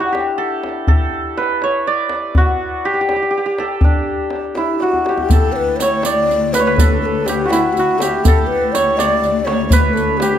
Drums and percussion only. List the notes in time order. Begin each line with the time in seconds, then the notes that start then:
0.15 tombak tek
0.64 tombak tek
0.87 tombak dum
1.38 tombak tek
1.62 tombak tek
2.09 tombak tek
2.35 tombak dum
3.09 tombak tek
3.58 tombak tek
3.81 tombak dum
4.30 tombak tek
4.55 tombak tek
4.80 tombak tek
4.93 tombak ka
5.06 tombak tek
5.18 tombak ka
5.30 riq, tombak dum
5.55 tombak ka
5.80 riq, tombak tek
6.03 riq, tombak tek
6.29 riq, tombak ka
6.54 riq, tombak tek
6.78 riq, tombak dum
7.03 tombak ka
7.26 riq, tombak tek
7.50 riq, tombak tek
7.76 riq, tombak ka
8.00 riq, tombak tek
8.25 riq, tombak dum
8.50 tombak ka
8.75 riq, tombak tek
8.99 riq, tombak tek
9.23 riq, tombak ka
9.47 tombak tek
9.70 riq, tombak dum
9.96 riq, tombak ka
10.20 riq, tombak tek